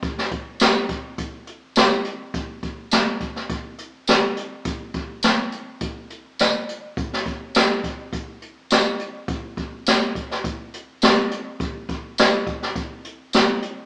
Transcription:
\new DrumStaff \with { instrumentName = "Drums" } \drummode { \time 4/4 \tempo 4 = 104 <hh bd>16 sn16 <hh bd>8 <hh sn tamb>8 <hh bd>8 <hh bd>8 hh8 <hh sn tamb>8 hh8 | <hh bd>8 <hh bd>8 <hh sn tamb>8 <hh bd>16 sn16 <hh bd>8 hh8 <hh sn tamb>8 hh8 | <hh bd>8 <hh bd>8 <hh sn tamb>8 hh8 <hh bd>8 hh8 <hh sn tamb>8 hh8 | <hh bd>16 sn16 <hh bd>8 <hh sn tamb>8 <hh bd>8 <hh bd>8 hh8 <hh sn tamb>8 hh8 |
<hh bd>8 <hh bd>8 <hh sn tamb>8 <hh bd>16 sn16 <hh bd>8 hh8 <hh sn tamb>8 hh8 | <hh bd>8 <hh bd>8 <hh sn tamb>8 <hh bd>16 sn16 <hh bd>8 hh8 <hh sn tamb>8 hh8 | }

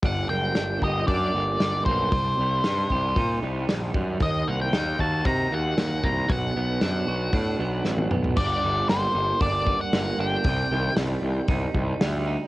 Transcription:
<<
  \new Staff \with { instrumentName = "Lead electric guitar" } { \time 4/4 \key g \minor \tempo 4 = 115 fis''8 g''4 ees''8 d''4. c''8~ | c''2~ c''8 r4. | ees''8 ges''16 g''8. a''8 bes''8 ges''4 bes''8 | fis''2.~ fis''8 r8 |
d''4 c''4 d''8. fis''8. g''8~ | g''4 r2. | }
  \new Staff \with { instrumentName = "Clean electric guitar" } { \time 4/4 \key g \minor g8 bes8 d'8 g'8 d'8 bes8 g8 bes8 | c8 g8 ees'8 g'8 ees'8 g8 ees8 g8 | ees8 bes8 ees'8 ges'8 ees'8 bes8 ees8 bes8 | b,8 b8 d'8 fis'8 d'8 b8 fis8 b8 |
g,8 g8 bes8 g8 d'8 g8 bes8 d'8 | c8 ees8 g4 ees'4 g8 ees'8 | }
  \new Staff \with { instrumentName = "Picked electric bass" } { \clef bass \time 4/4 \key g \minor g,,8 fis,,8 g,,8 g,,8 fis,8 g,,8 g,,8 b,,8 | c,8 c,8 g,8 c,8 bes,8 c,8 bes,,8 fis,8 | ees,8 c,8 ees,8 ees,8 c8 ees,8 ees,8 c,8 | b,,8 b,,8 fis,8 b,,8 a,8 b,,8 a,,8 b,,8 |
g,,8 g,,8 g,,8 g,,8 g,,4 g,,8 g,,8 | c,8 c,8 c,8 c,8 c,8 c,8 d,4 | }
  \new DrumStaff \with { instrumentName = "Drums" } \drummode { \time 4/4 <hho bd>4 <hho sn>8 bd8 <hho bd>4 <hho sn>8 bd8 | <hho bd>4 <hho sn>8 bd8 <hho bd>4 <hho sn>8 bd8 | <hho bd>4 <hho sn>8 bd8 <hho bd>4 <hho sn>8 bd8 | <hho bd>4 <hho sn>4 <hho bd>4 sn16 tommh16 toml16 tomfh16 |
<cymc bd>4 <hho sn>4 <hho bd>8 bd8 <hho sn>4 | <hho bd>4 <hho sn>4 <hho bd>8 bd8 <hho sn>4 | }
>>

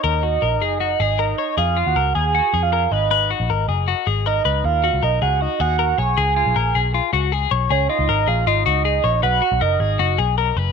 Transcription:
<<
  \new Staff \with { instrumentName = "Soft synth lead" } { \time 4/4 \key des \mixolydian \tempo 4 = 157 ees''2. ees''4 | f''8. ges''8. aes''4~ aes''16 f''8. ees''8~ | ees''4. r4. ees''4 | f''4 ees''8 ges''8 ees''8 ges''4 aes''8~ |
aes''2. r4 | des''8 ees''4 f''8 ees''2 | fis''4 dis''8 dis''4 r4. | }
  \new Staff \with { instrumentName = "Clean electric guitar" } { \time 4/4 \key des \mixolydian bes'8 ges'8 bes'8 aes'8 ges'8 aes'8 bes'8 des''8 | aes'8 f'8 bes'8 aes'8 ges'8 aes'8 bes'8 ces''8 | ces''8 ges'8 bes'8 aes'8 ges'8 aes'8 bes'8 ces''8 | bes'8 ges'8 bes'8 aes'8 ges'8 aes'8 bes'8 des''8 |
aes'8 f'8 bes'8 aes'8 f'8 ges'8 aes'8 des''8 | aes'8 f'8 bes'8 aes'8 f'8 ges'8 aes'8 des''8 | b'8 fis'8 bes'8 aes'8 fis'8 aes'8 bes'8 b'8 | }
  \new Staff \with { instrumentName = "Picked electric bass" } { \clef bass \time 4/4 \key des \mixolydian ees,4 bes,,8 ges,,4 aes,,4 r8 | f,8. ees,16 des,8 ees,8. r16 f,4 aes,,8~ | aes,,8. bes,,16 aes,,8 ges,,8. r16 aes,,4 des,8 | ees,8. des,16 ces,8 des,8. r16 ees,4 ces,8 |
des,8. ces,16 bes,,8 ces,8. r16 des,4 ces,8 | des,8 r16 des,16 aes,,8 bes,,8 aes,,8 des,4 bes,,8 | b,,8 r16 b,,16 fis,,8 aes,,8 fis,,8 b,,4 fis,,8 | }
>>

